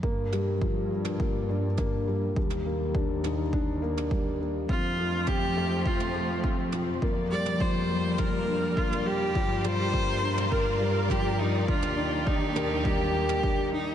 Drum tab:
T2 |--o----o----o---|-o----o----o----|----o----o----o-|---o----o----o--|
BD |o---o---o---o---|o---o---o---o---|o---o---o---o---|o---o---o---o---|

T2 |--o----o----o---|-o----o----o----|
BD |o---o---o---o---|o---o---o---o---|